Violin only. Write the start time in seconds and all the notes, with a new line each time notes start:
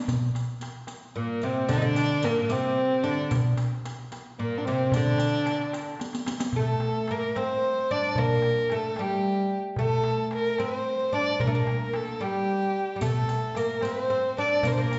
1.18 A#3
1.44 C4
1.71 D4
1.77 D#4
1.85 D4
2.24 A#3
2.51 C4
3.03 D4
4.39 A#3
4.58 D4
4.65 C4
4.93 D4
6.56 A4
7.11 A#4
7.37 C5
7.91 D5
8.19 A#4
8.75 A4
9.01 G4
9.81 A4
10.35 A#4
10.61 C5
11.14 D5
11.40 A#4
11.96 A4
12.22 G4
13.04 A4
13.58 A#4
13.86 C5
14.39 D5
14.67 A#4
14.72 C5
14.81 A#4